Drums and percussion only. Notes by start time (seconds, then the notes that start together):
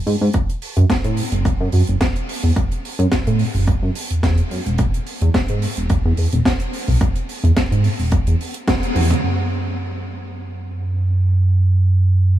0.07 open hi-hat
0.33 kick, closed hi-hat
0.49 closed hi-hat
0.62 open hi-hat
0.77 closed hi-hat
0.90 kick, snare, closed hi-hat
1.04 closed hi-hat
1.17 open hi-hat
1.32 closed hi-hat
1.45 kick, closed hi-hat
1.72 open hi-hat
1.87 closed hi-hat
2.01 kick, snare, closed hi-hat
2.16 closed hi-hat
2.29 open hi-hat
2.44 open hi-hat
2.56 kick, closed hi-hat
2.72 closed hi-hat
2.85 open hi-hat
3.00 closed hi-hat
3.12 kick, snare, closed hi-hat
3.27 closed hi-hat
3.39 open hi-hat
3.55 open hi-hat
3.68 kick, closed hi-hat
3.95 open hi-hat
4.10 closed hi-hat
4.23 kick, snare, closed hi-hat
4.38 closed hi-hat
4.51 open hi-hat
4.66 closed hi-hat
4.78 kick, closed hi-hat
4.94 closed hi-hat
5.06 open hi-hat
5.21 closed hi-hat
5.34 kick, snare, closed hi-hat
5.48 closed hi-hat
5.62 open hi-hat
5.77 closed hi-hat
5.90 kick, closed hi-hat
6.17 open hi-hat
6.32 closed hi-hat
6.45 kick, snare, closed hi-hat
6.60 closed hi-hat
6.73 open hi-hat
6.88 open hi-hat
7.01 kick, closed hi-hat
7.15 closed hi-hat
7.29 open hi-hat
7.45 closed hi-hat
7.57 kick, snare, closed hi-hat
7.72 closed hi-hat
7.84 open hi-hat
7.99 open hi-hat
8.12 kick, closed hi-hat
8.27 closed hi-hat
8.41 open hi-hat
8.54 closed hi-hat
8.68 kick, snare, closed hi-hat
8.83 closed hi-hat
8.96 open hi-hat, high tom
9.11 closed hi-hat, mid tom